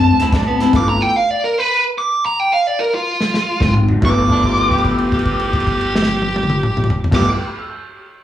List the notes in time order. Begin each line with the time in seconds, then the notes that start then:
Already playing: F#2 D3 C4 A5
0.19 D2 D3 C4 E4, snare, closed hi-hat
0.32 A2 D3 C4 D4, kick, snare, closed hi-hat
0.47 B3
0.60 D3 C4 E4, snare, closed hi-hat
0.73 G1 G2 D3 A3 B3 E4 F4 D6, kick, snare, closed hi-hat, crash
0.89 A#5
1.02 G5
1.16 F5
1.31 D5
1.44 A#4
1.58 B4
1.98 D6
2.26 A#5
2.40 G5
2.53 F5
2.67 D5
2.80 A#4
2.94 F4
3.21 snare
3.34 snare
3.60 G#1 G#2 D#3, kick, snare, mid tom
3.74 mid tom
3.89 G#2 F#3, floor tom
4.01 G1 G2 F3 A3 B3 E4, kick, crash
4.05 E4 D6
4.30 D4, kick, crash
4.37 crash
4.43 F4 G4, kick, crash
4.51 B4
4.58 E5, crash
4.69 G4 G5, kick, crash
4.78 B5, crash
4.85 kick, crash
4.89 E6
4.98 G6, crash
5.12 G4, kick, crash
5.19 crash
5.25 kick, crash
5.40 crash
5.53 kick, crash
5.60 crash
5.67 kick, crash
5.81 crash
5.96 snare
6.02 snare
6.08 high tom
6.22 high tom
6.36 high tom
6.43 mid tom
6.50 mid tom
6.63 mid tom
6.77 mid tom
6.84 mid tom
6.90 floor tom
7.04 floor tom
7.11 G1 G2 F3 A3 B3 E4 G4 D6, kick, snare, crash
7.20 B4
7.29 E5
7.37 G5
7.48 B5
7.59 E6
7.70 G6